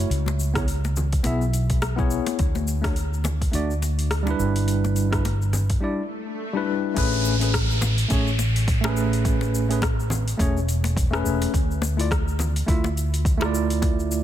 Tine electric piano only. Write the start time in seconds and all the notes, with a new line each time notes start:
0.54 B3 E4 G#4
0.58 C#5
1.23 B3 E4 G#4 E5
1.96 B3 E4 G#4 C#5
2.82 A3 D4 F#4
2.86 C#5
3.51 A3 D4 F#4 D5
4.23 G3 D4
4.28 E4 B4
5.11 G3 D4 E4 B4
5.80 G3 D4 E4 D5
6.53 G3 D4 E4 B4
6.94 A3 C#4 G#4
6.98 B4
7.39 A3 C#4 G#4
7.43 B4
8.08 A3 C#4 G#4
8.13 C#5
8.81 A3 C#4
8.86 G#4 B4
9.69 A3 C#4 G#4 B4
10.37 A3 C#4 G#4
10.41 C#5
11.11 A3 C#4 G#4 B4
11.97 A3 E4 F4 D5
12.66 A3 E4 F4 E5
13.37 A3 E4
13.43 F4 D5